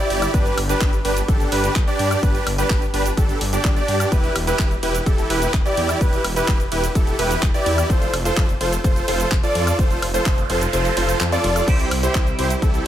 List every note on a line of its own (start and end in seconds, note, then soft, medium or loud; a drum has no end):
0.00 0.31 E4 loud
0.00 0.31 G4 medium
0.00 0.31 D5 loud
0.10 0.27 G1 medium
0.10 open hi-hat medium
0.22 closed hi-hat medium
0.22 high woodblock medium
0.22 shaker medium
0.34 0.51 G1 loud
0.34 0.55 D4 medium
0.34 0.55 G4 medium
0.34 0.55 B4 loud
0.34 kick loud
0.34 closed hi-hat medium
0.34 shaker medium
0.46 closed hi-hat soft
0.46 shaker soft
0.58 0.74 G1 medium
0.58 open hi-hat loud
0.58 high woodblock medium
0.69 0.90 D4 medium
0.69 0.90 G4 medium
0.69 0.90 B4 loud
0.69 closed hi-hat medium
0.69 shaker medium
0.81 0.98 G1 medium
0.81 kick loud
0.81 clap loud
0.81 closed hi-hat medium
0.81 shaker medium
0.93 closed hi-hat soft
0.93 shaker soft
1.05 1.22 G1 loud
1.05 1.18 D4 medium
1.05 1.18 G4 medium
1.05 1.18 B4 medium
1.05 open hi-hat loud
1.17 closed hi-hat medium
1.17 shaker medium
1.28 1.45 G1 loud
1.28 1.49 D4 medium
1.28 1.49 G4 medium
1.28 1.49 A4 medium
1.28 kick loud
1.28 closed hi-hat medium
1.28 shaker medium
1.40 closed hi-hat soft
1.40 shaker soft
1.52 1.69 G1 medium
1.52 1.73 D4 loud
1.52 1.73 G4 medium
1.52 1.73 B4 loud
1.52 open hi-hat loud
1.64 closed hi-hat soft
1.64 shaker medium
1.76 1.84 G1 medium
1.76 kick loud
1.76 clap loud
1.76 closed hi-hat medium
1.76 shaker medium
1.87 2.20 D4 loud
1.87 2.20 G4 medium
1.87 2.20 D5 loud
1.87 closed hi-hat soft
1.87 shaker soft
1.99 2.16 G2 medium
1.99 open hi-hat loud
2.11 closed hi-hat medium
2.11 high woodblock medium
2.11 shaker medium
2.23 2.40 G1 loud
2.23 2.44 D4 medium
2.23 2.44 G4 medium
2.23 2.44 B4 loud
2.23 kick loud
2.23 closed hi-hat medium
2.23 shaker medium
2.35 closed hi-hat soft
2.35 shaker soft
2.47 2.63 G1 medium
2.47 open hi-hat loud
2.47 high woodblock medium
2.58 2.79 D4 medium
2.58 2.79 G4 medium
2.58 2.79 B4 loud
2.58 closed hi-hat soft
2.58 shaker medium
2.70 2.87 G1 medium
2.70 kick loud
2.70 clap loud
2.70 closed hi-hat medium
2.70 shaker medium
2.82 closed hi-hat soft
2.82 shaker soft
2.94 3.10 G1 medium
2.94 3.07 D4 medium
2.94 3.07 G4 medium
2.94 3.07 B4 medium
2.94 open hi-hat loud
3.06 closed hi-hat medium
3.06 shaker medium
3.17 3.34 G1 loud
3.17 3.38 D4 medium
3.17 3.38 G4 medium
3.17 3.38 A4 medium
3.17 kick loud
3.17 closed hi-hat medium
3.17 shaker medium
3.29 closed hi-hat soft
3.29 shaker soft
3.41 3.58 G1 medium
3.41 open hi-hat loud
3.53 3.74 D4 medium
3.53 3.74 G4 medium
3.53 3.74 D5 medium
3.53 closed hi-hat soft
3.53 shaker medium
3.65 3.81 G1 medium
3.65 kick loud
3.65 clap loud
3.65 closed hi-hat medium
3.65 shaker medium
3.76 4.09 D4 medium
3.76 4.09 G4 medium
3.76 4.09 D5 medium
3.76 closed hi-hat soft
3.76 shaker soft
3.88 4.05 G2 loud
3.88 open hi-hat loud
4.00 closed hi-hat medium
4.00 high woodblock medium
4.00 shaker medium
4.12 4.29 E1 loud
4.12 4.33 E4 medium
4.12 4.33 G4 medium
4.12 4.33 B4 loud
4.12 kick loud
4.12 closed hi-hat medium
4.12 shaker medium
4.24 closed hi-hat soft
4.24 shaker soft
4.35 4.52 E1 medium
4.35 open hi-hat loud
4.35 ride medium
4.35 high woodblock medium
4.47 4.68 E4 medium
4.47 4.68 G4 medium
4.47 4.68 B4 loud
4.47 closed hi-hat medium
4.47 shaker medium
4.59 4.76 E1 medium
4.59 kick loud
4.59 clap loud
4.59 closed hi-hat medium
4.59 shaker medium
4.71 closed hi-hat soft
4.71 shaker soft
4.83 4.99 E1 medium
4.83 4.96 E4 medium
4.83 4.96 G4 medium
4.83 4.96 B4 medium
4.83 open hi-hat loud
4.83 ride medium
4.95 closed hi-hat medium
4.95 shaker medium
5.06 5.23 E1 loud
5.06 5.27 E4 medium
5.06 5.27 G4 medium
5.06 5.27 A4 medium
5.06 kick loud
5.06 closed hi-hat medium
5.06 shaker medium
5.18 closed hi-hat soft
5.18 shaker soft
5.30 5.47 E1 medium
5.30 5.51 E4 loud
5.30 5.51 G4 medium
5.30 5.51 B4 loud
5.30 open hi-hat loud
5.30 ride medium
5.42 closed hi-hat medium
5.42 shaker medium
5.54 5.62 E1 medium
5.54 kick loud
5.54 clap loud
5.54 closed hi-hat medium
5.54 shaker medium
5.65 5.98 E4 loud
5.65 5.98 G4 medium
5.65 5.98 D5 loud
5.65 closed hi-hat soft
5.65 shaker soft
5.77 5.94 E2 medium
5.77 open hi-hat medium
5.77 ride medium
5.89 closed hi-hat medium
5.89 high woodblock medium
5.89 shaker medium
6.01 6.18 E1 loud
6.01 6.22 E4 medium
6.01 6.22 G4 medium
6.01 6.22 B4 loud
6.01 kick loud
6.01 closed hi-hat medium
6.01 shaker medium
6.13 closed hi-hat soft
6.13 shaker soft
6.24 6.41 E1 medium
6.24 open hi-hat loud
6.24 ride medium
6.24 high woodblock medium
6.36 6.57 E4 loud
6.36 6.57 G4 medium
6.36 6.57 B4 loud
6.36 closed hi-hat medium
6.36 shaker medium
6.48 6.65 E1 medium
6.48 kick loud
6.48 clap loud
6.48 closed hi-hat medium
6.48 shaker medium
6.60 closed hi-hat soft
6.60 shaker soft
6.72 6.88 E1 loud
6.72 6.85 E4 medium
6.72 6.85 G4 medium
6.72 6.85 B4 medium
6.72 open hi-hat medium
6.72 ride medium
6.84 closed hi-hat medium
6.84 shaker medium
6.95 7.12 E1 loud
6.95 7.16 E4 medium
6.95 7.16 G4 medium
6.95 7.16 A4 medium
6.95 kick loud
6.95 closed hi-hat medium
6.95 shaker medium
7.07 closed hi-hat soft
7.07 shaker soft
7.19 7.36 E1 medium
7.19 7.40 E4 loud
7.19 7.40 G4 medium
7.19 7.40 B4 loud
7.19 open hi-hat loud
7.19 ride medium
7.31 closed hi-hat medium
7.31 shaker medium
7.43 7.51 E1 medium
7.43 kick loud
7.43 clap loud
7.43 closed hi-hat medium
7.43 shaker medium
7.54 7.87 E4 loud
7.54 7.87 G4 medium
7.54 7.87 D5 loud
7.54 closed hi-hat soft
7.54 shaker soft
7.66 7.83 E2 medium
7.66 open hi-hat medium
7.66 ride medium
7.78 closed hi-hat medium
7.78 high woodblock medium
7.78 shaker medium
7.90 8.07 F1 loud
7.90 8.11 F4 medium
7.90 8.11 A4 medium
7.90 8.11 C5 loud
7.90 kick loud
7.90 closed hi-hat medium
7.90 shaker medium
8.02 closed hi-hat soft
8.02 shaker soft
8.13 8.30 F1 medium
8.13 open hi-hat loud
8.13 ride medium
8.13 high woodblock medium
8.25 8.46 F4 medium
8.25 8.46 A4 medium
8.25 8.46 C5 loud
8.25 closed hi-hat medium
8.25 shaker medium
8.37 8.54 F1 medium
8.37 kick loud
8.37 clap loud
8.37 closed hi-hat medium
8.37 shaker medium
8.49 closed hi-hat soft
8.49 shaker soft
8.61 8.77 F1 loud
8.61 8.74 F4 medium
8.61 8.74 A4 medium
8.61 8.74 C5 medium
8.61 open hi-hat medium
8.61 ride medium
8.73 closed hi-hat medium
8.73 shaker medium
8.84 9.01 F1 loud
8.84 9.05 F4 medium
8.84 9.05 A4 medium
8.84 9.05 C5 medium
8.84 kick loud
8.84 closed hi-hat medium
8.84 shaker medium
8.96 closed hi-hat soft
8.96 shaker soft
9.08 9.25 F1 medium
9.08 9.29 F4 loud
9.08 9.29 A4 medium
9.08 9.29 C5 loud
9.08 open hi-hat loud
9.08 ride medium
9.20 closed hi-hat medium
9.20 shaker medium
9.32 9.40 F1 medium
9.32 kick loud
9.32 clap loud
9.32 closed hi-hat medium
9.32 shaker medium
9.43 9.76 F4 loud
9.43 9.76 A4 medium
9.43 9.76 D5 loud
9.43 closed hi-hat soft
9.43 shaker soft
9.55 9.72 F2 medium
9.55 open hi-hat medium
9.55 ride medium
9.67 closed hi-hat medium
9.67 high woodblock medium
9.67 shaker medium
9.79 9.96 F1 loud
9.79 10.00 C5 loud
9.79 kick loud
9.79 closed hi-hat medium
9.79 noise sweep medium
9.79 shaker medium
9.91 closed hi-hat soft
9.91 shaker soft
10.02 10.19 F1 medium
10.02 open hi-hat loud
10.02 ride medium
10.02 high woodblock medium
10.14 10.35 F4 medium
10.14 10.35 A4 medium
10.14 10.35 C5 loud
10.14 closed hi-hat medium
10.14 shaker medium
10.26 10.43 F1 medium
10.26 kick loud
10.26 clap loud
10.26 closed hi-hat medium
10.26 shaker medium
10.38 closed hi-hat soft
10.38 shaker soft
10.50 10.66 F1 loud
10.50 10.63 F4 medium
10.50 10.63 A4 medium
10.50 10.63 C5 medium
10.50 open hi-hat medium
10.50 ride medium
10.61 closed hi-hat medium
10.61 shaker medium
10.73 10.90 F1 loud
10.73 10.94 F4 medium
10.73 10.94 A4 medium
10.73 10.94 C5 medium
10.73 closed hi-hat medium
10.73 shaker medium
10.85 closed hi-hat soft
10.85 shaker soft
10.97 11.14 F1 medium
10.97 11.18 F4 loud
10.97 11.18 A4 medium
10.97 11.18 C5 loud
10.97 open hi-hat loud
10.97 ride medium
11.09 closed hi-hat medium
11.09 shaker medium
11.20 11.37 F2 loud
11.20 clap loud
11.20 closed hi-hat medium
11.20 shaker medium
11.32 11.65 F4 loud
11.32 11.65 A4 medium
11.32 11.65 D5 loud
11.32 closed hi-hat soft
11.32 shaker soft
11.44 11.61 F1 medium
11.44 open hi-hat medium
11.44 ride medium
11.56 closed hi-hat medium
11.56 high woodblock medium
11.56 shaker medium
11.67 11.85 C2 loud
11.67 12.87 G3 medium
11.67 12.87 C4 medium
11.67 11.89 E4 medium
11.67 12.87 E4 medium
11.67 11.89 G4 medium
11.67 12.87 G4 medium
11.67 11.89 C5 loud
11.67 kick loud
11.67 closed hi-hat medium
11.67 crash medium
11.67 shaker medium
11.80 closed hi-hat soft
11.80 shaker soft
11.91 12.08 C2 medium
11.91 open hi-hat loud
11.91 ride medium
11.91 high woodblock medium
12.03 12.24 E4 medium
12.03 12.24 G4 medium
12.03 12.24 C5 loud
12.03 closed hi-hat medium
12.03 shaker medium
12.15 12.32 C2 medium
12.15 kick loud
12.15 clap loud
12.15 closed hi-hat medium
12.15 shaker medium
12.27 closed hi-hat soft
12.27 shaker soft
12.39 12.55 C2 loud
12.39 12.52 E4 medium
12.39 12.52 G4 medium
12.39 12.52 C5 medium
12.39 open hi-hat medium
12.39 ride medium
12.50 closed hi-hat medium
12.50 shaker medium
12.62 12.79 C2 loud
12.62 12.83 E4 medium
12.62 12.83 G4 medium
12.62 12.83 A4 medium
12.62 kick loud
12.62 closed hi-hat medium
12.62 shaker medium
12.74 closed hi-hat soft
12.74 shaker soft